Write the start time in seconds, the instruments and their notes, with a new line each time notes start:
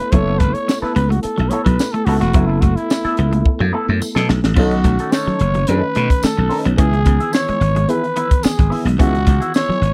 Already playing: tonewheel organ A3 B3 E4 A4, trumpet B4
0.00 muted clean electric guitar stroke, closed hi-hat
0.12 slap bass F#1, clean electric guitar F#3 B3 E4 A4, trumpet C#5, kick, closed hi-hat
0.28 muted clean electric guitar stroke
0.39 slap bass F#1, clean electric guitar A3, trumpet B4, kick, closed hi-hat
0.53 trumpet C#5, muted clean electric guitar stroke, closed hi-hat
0.68 muted clean electric guitar stroke, snare, tambourine
0.82 clean electric guitar B3 E4 A4, trumpet B4, muted slap bass stroke, snare
0.95 slap bass C#2, clean electric guitar B3, trumpet B4, closed hi-hat
1.10 clean electric guitar A3, trumpet F#4, muted clean electric guitar stroke, closed hi-hat
1.22 trumpet A4, muted clean electric guitar stroke, muted slap bass stroke, closed hi-hat
1.38 slap bass B1, clean electric guitar F#3, muted clean electric guitar stroke, closed hi-hat
1.49 clean electric guitar B3 E4 A4, trumpet C#5, muted clean electric guitar stroke, closed hi-hat
1.64 slap bass B1, clean electric guitar F#3, trumpet B4, muted clean electric guitar stroke, kick, closed hi-hat
1.79 muted clean electric guitar stroke, snare, tambourine
1.92 clean electric guitar A3, trumpet A4, muted clean electric guitar stroke, closed hi-hat
2.05 slap bass C#2, clean electric guitar B3 E4 A4, trumpet F#4, muted clean electric guitar stroke, open hi-hat
2.20 slap bass E1, clean electric guitar A3, trumpet F#4, muted clean electric guitar stroke, snare, closed hi-hat
2.33 slap bass F#1, clean electric guitar F#3 B3 E4 A4, kick, closed hi-hat
2.47 trumpet E4, muted clean electric guitar stroke
2.61 slap bass F#1, clean electric guitar A3, trumpet F#4, kick, closed hi-hat
2.76 trumpet E4, muted clean electric guitar stroke, closed hi-hat
2.90 muted clean electric guitar stroke, snare, tambourine
3.04 clean electric guitar B3 E4 A4, muted slap bass stroke, snare, closed hi-hat
3.17 slap bass C#2, clean electric guitar B3, muted clean electric guitar stroke, closed hi-hat
3.33 clean electric guitar A3, muted clean electric guitar stroke, closed hi-hat
3.45 muted clean electric guitar stroke, kick
3.60 slap bass F#2, clean electric guitar F#3, muted clean electric guitar stroke
3.73 clean electric guitar B3 E4 A4, muted clean electric guitar stroke
3.88 slap bass F#2, clean electric guitar A3, muted clean electric guitar stroke
4.01 muted clean electric guitar stroke, tambourine
4.15 slap bass B2, clean electric guitar F#3 B3 E4 A4, snare
4.28 slap bass B1, clean electric guitar A3, muted clean electric guitar stroke, snare
4.44 slap bass A1, muted clean electric guitar stroke, snare
4.56 slap bass B1, tonewheel organ D#3 A3 C#4, clean electric guitar B3 C#4 D#4 A4, trumpet F#4, kick, crash
4.71 muted clean electric guitar stroke, closed hi-hat
4.84 slap bass B1, clean electric guitar A3, muted clean electric guitar stroke, kick, closed hi-hat
4.99 clean electric guitar C#4 D#4 A4, closed hi-hat
5.12 clean electric guitar C#4 D#4 A4, trumpet C#5, snare, tambourine
5.27 clean electric guitar F#3, muted slap bass stroke, snare
5.39 slap bass F#1, muted clean electric guitar stroke, closed hi-hat
5.54 clean electric guitar F#3, muted clean electric guitar stroke, closed hi-hat
5.67 slap bass F#2, clean electric guitar C#4 D#4 A4, trumpet B4, closed hi-hat
5.95 slap bass B2, clean electric guitar A3 C#4 D#4 B4, closed hi-hat
6.10 muted clean electric guitar stroke, kick, closed hi-hat
6.23 clean electric guitar A3, trumpet A4, muted clean electric guitar stroke, muted slap bass stroke, snare, tambourine
6.37 slap bass B1, muted clean electric guitar stroke
6.49 clean electric guitar C#4 D#4 B4, open hi-hat
6.65 slap bass B1, clean electric guitar B3, muted clean electric guitar stroke, closed hi-hat
6.77 slap bass C#2, tonewheel organ E3 B3, clean electric guitar B3 C#4 E4 G#4, trumpet G#4, kick, closed hi-hat
6.93 muted clean electric guitar stroke, closed hi-hat
7.05 slap bass C#2, clean electric guitar B3, muted clean electric guitar stroke, kick, closed hi-hat
7.20 clean electric guitar B3 E4 G#4, closed hi-hat
7.32 clean electric guitar B3 E4 G#4, trumpet C#5, snare, tambourine
7.48 clean electric guitar G#3, muted slap bass stroke, snare, closed hi-hat
7.61 slap bass G#1, muted clean electric guitar stroke, closed hi-hat
7.76 clean electric guitar G#3, muted clean electric guitar stroke, closed hi-hat
7.88 clean electric guitar B3 E4 G#4, trumpet B4, closed hi-hat
8.04 muted clean electric guitar stroke, closed hi-hat
8.16 clean electric guitar B3 E4 B4, closed hi-hat
8.30 muted clean electric guitar stroke, kick, closed hi-hat
8.43 clean electric guitar B3, trumpet G#4, muted clean electric guitar stroke, muted slap bass stroke, snare, tambourine
8.58 slap bass G#1, muted clean electric guitar stroke, kick, closed hi-hat
8.70 clean electric guitar B3 E4 B4, open hi-hat
8.85 slap bass B1, clean electric guitar G#3, muted clean electric guitar stroke, snare, closed hi-hat
8.99 slap bass C#2, clean electric guitar B3 C#4 E4 G#4, trumpet F#4, kick, closed hi-hat
9.14 muted clean electric guitar stroke, closed hi-hat
9.26 slap bass C#2, clean electric guitar G#3, muted clean electric guitar stroke, kick, closed hi-hat
9.40 clean electric guitar B3 E4 G#4, closed hi-hat
9.54 clean electric guitar B3 E4 G#4, trumpet C#5, snare, tambourine
9.69 clean electric guitar F#3, muted slap bass stroke, snare
9.81 slap bass G#1, muted clean electric guitar stroke, closed hi-hat